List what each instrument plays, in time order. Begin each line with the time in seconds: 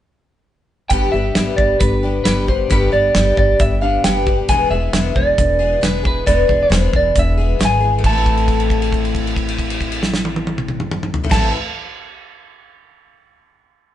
0.90 upright bass G1, twelve-string acoustic guitar G2 D3 G3 B3 D4 G4, clean electric guitar G5, kick, closed hi-hat
1.12 upright bass G1, twelve-string acoustic guitar B3 D4 G4, clean electric guitar E5
1.16 twelve-string acoustic guitar G3
1.35 upright bass G1, twelve-string acoustic guitar G3 B3 D4, snare, closed hi-hat
1.40 twelve-string acoustic guitar G4
1.57 upright bass G1, clean electric guitar D5, kick
1.80 upright bass G1, clean electric guitar B4, kick, closed hi-hat
2.03 twelve-string acoustic guitar G3 B3 D4 G4
2.24 upright bass G1, twelve-string acoustic guitar G3 B3 D4 G4, clean electric guitar B4, snare, closed hi-hat
2.48 twelve-string acoustic guitar G3 B3 D4 G4, clean electric guitar C5, kick
2.70 upright bass G1, twelve-string acoustic guitar G2 D3 G3 B3 D4 G4, clean electric guitar B4, kick, closed hi-hat
2.92 upright bass G1, twelve-string acoustic guitar G3 B3 D4 G4, clean electric guitar D5
3.15 upright bass G1, twelve-string acoustic guitar G3 B3 D4 G4, snare, closed hi-hat
3.37 upright bass G1, clean electric guitar D5, kick
3.60 upright bass G1, clean electric guitar E5, kick, closed hi-hat
3.81 twelve-string acoustic guitar G3 B3 D4 G4, clean electric guitar F5
4.04 upright bass G1, twelve-string acoustic guitar G3 B3 D4 G4, clean electric guitar G5, snare, closed hi-hat
4.26 twelve-string acoustic guitar G3 B3 D4 G4, kick
4.49 upright bass E1, twelve-string acoustic guitar E2 B2 E3 G#3 B3 G#4, clean electric guitar G#5, kick, closed hi-hat
4.70 upright bass E1, twelve-string acoustic guitar E3 G#3 B3 G#4, clean electric guitar E5
4.93 upright bass E1, twelve-string acoustic guitar E3 G#3 B3 G#4, snare, closed hi-hat
5.16 upright bass E1, clean electric guitar D5, kick
5.38 upright bass E1, kick, closed hi-hat
5.59 twelve-string acoustic guitar E3 G#3 B3 G#4
5.81 upright bass E1, twelve-string acoustic guitar E3 G#3 B3 G#4, clean electric guitar B4, snare, closed hi-hat
6.03 twelve-string acoustic guitar E3 G#3 B3 G#4, clean electric guitar B4, kick
6.26 upright bass E1, twelve-string acoustic guitar E2 B2 E3 G#3 B3 G#4, clean electric guitar D5, kick, closed hi-hat
6.47 upright bass E1, twelve-string acoustic guitar E3 G#3 B3 G#4, kick
6.63 clean electric guitar C5
6.70 upright bass E1, twelve-string acoustic guitar E3 G#3 B3 G#4, snare, closed hi-hat
6.93 upright bass E1, clean electric guitar D5, kick
7.16 upright bass E1, clean electric guitar E5, kick, closed hi-hat
7.38 twelve-string acoustic guitar E3 G#3 B3 G#4
7.59 upright bass G#1, twelve-string acoustic guitar E3 G#3 B3 G#4, snare, closed hi-hat
7.65 clean electric guitar G#5
7.80 twelve-string acoustic guitar E3 G#3 B3 G#4
7.98 twelve-string acoustic guitar A2
8.04 upright bass A1, twelve-string acoustic guitar E3, clean electric guitar A5, kick, crash
8.09 twelve-string acoustic guitar A3
8.13 twelve-string acoustic guitar C4
8.17 twelve-string acoustic guitar E4
8.26 kick, crash
8.37 crash
8.48 kick, crash
8.60 crash
8.70 kick, crash
8.82 crash
8.93 kick, crash
9.05 crash
9.15 kick, crash
9.27 crash
9.36 kick, crash
9.49 crash
9.59 kick, crash
9.70 crash
9.81 kick, crash
9.92 crash
10.03 snare
10.14 snare
10.25 high tom
10.36 high tom
10.47 high tom
10.58 mid tom
10.68 mid tom
10.80 mid tom
10.91 mid tom
11.03 mid tom
11.14 floor tom
11.24 twelve-string acoustic guitar A2, floor tom
11.29 upright bass A1, twelve-string acoustic guitar E3, clean electric guitar A5, kick, snare, crash
11.34 twelve-string acoustic guitar A3 C4
11.43 twelve-string acoustic guitar E4